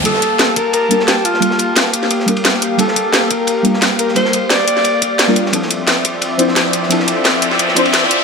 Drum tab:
RD |x-x-x-x-x-x-x-x-|x-x-x-x-x-xxx-x-|x-x-x-x-x-x-x-x-|x-x-x-x-x-x-x-x-|
HH |x-x-x-x-x-x-x-x-|x-x-x-x-x-x-x-x-|x-x-x-x-x-x-x-x-|x-x-x-x-x-x-x-x-|
SD |-o--o------oo--o|-o--oo-o-o--oo--|-o--o------oo--o|-o--oo-o----oo-o|
BD |o-o---o---------|o---------o-----|o-o---o---------|o---------o-----|

RD |x-x-x-x-x-x-x-x-|x-x-x-x-x-xxx-x-|
HH |x-x-x-x-x-x-x-x-|x-x-x-x-x-x-x-x-|
SD |-o--o------oo--o|-o--oo-o-o--oo--|
BD |o-o---o---------|o---------o-----|